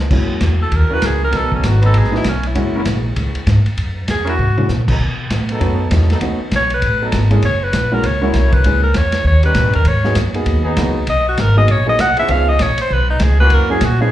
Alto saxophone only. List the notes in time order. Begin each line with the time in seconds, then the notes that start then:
0.62 A4
0.76 A#4
0.93 B4
1.06 G#4
1.24 A#4
1.36 A4
1.55 C#4
1.67 F#4
1.86 A4
1.98 G#4
2.17 E4
2.29 C#4
2.47 E4
4.10 G#4
4.29 F#4
6.56 C#5
6.74 B4
7.45 C#5
7.63 B4
7.94 A#4
8.06 C#5
8.36 C#5
8.53 B4
8.83 A#4
8.96 C#5
9.27 C#5
9.45 B4
9.75 A#4
9.88 C#5
11.09 D#5
11.29 F#4
11.40 A#4
11.58 D#5
11.71 C#5
11.89 D#5
12.01 F#5
12.19 E5
12.32 F5
12.49 D#5
12.62 C#5
12.81 C5
12.93 B4
13.10 D#4
13.23 G#4
13.40 B4
13.54 A#4
13.71 G#4
13.84 F#4
14.01 G#4